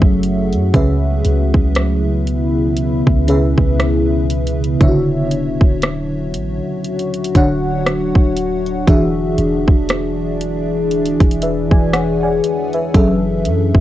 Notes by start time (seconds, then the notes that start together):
Already playing: F#3 A3 C#4 F#4 G#4 A4 E5
0.02 F#1, kick
0.23 closed hi-hat
0.53 F#2, closed hi-hat
0.73 C#2 C#3 B3 C#4 E4 G#4 B4 E5, kick, closed hi-hat
1.25 C#2, closed hi-hat
1.54 C#2, kick
1.75 cross-stick, closed hi-hat
2.27 closed hi-hat
2.77 closed hi-hat
3.07 C#2, kick
3.28 C#3 C#4 G#4 B4 E5, closed hi-hat
3.58 C#2, kick
3.80 cross-stick, closed hi-hat
4.30 closed hi-hat
4.47 closed hi-hat
4.64 closed hi-hat
4.80 D1 D3 D4 E4 F#4 C#5 E5, kick, closed hi-hat
4.88 F#4
5.31 closed hi-hat
5.61 D1, kick
5.82 cross-stick, closed hi-hat
6.33 A1, closed hi-hat
6.84 D4, closed hi-hat
6.99 closed hi-hat
7.14 closed hi-hat
7.24 closed hi-hat
7.35 D1 D3 D4 F#4 C#5 F#5, kick, closed hi-hat
7.86 cross-stick, closed hi-hat
8.15 D1, kick
8.37 closed hi-hat
8.66 closed hi-hat
8.87 E1 E3 D4 F#4 G#4 E5, kick, closed hi-hat
9.38 E1, closed hi-hat
9.68 E1, kick
9.89 cross-stick, closed hi-hat
10.41 closed hi-hat
10.91 closed hi-hat
11.06 closed hi-hat
11.20 E1, kick, closed hi-hat
11.31 closed hi-hat
11.42 B4 E5, closed hi-hat
11.71 E1 D5 G#5, kick
11.93 C#5 F#5, cross-stick, closed hi-hat
12.23 D5 G#5
12.44 closed hi-hat
12.73 B4 E5, closed hi-hat
12.94 F#1 F#3 A3 C#4 E4 G#4 A4 E5, kick, closed hi-hat
13.45 F#2, closed hi-hat
13.75 F#1, kick